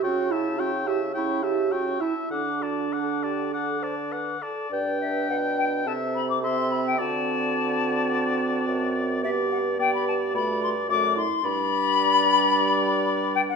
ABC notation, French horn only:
X:1
M:4/4
L:1/8
Q:1/4=107
K:G
V:1 name="French horn"
^C E C E C E C E | A F A G A c B A | D4 C2 C2 | C8 |
B,2 B,2 A,2 A, z | G,8 |]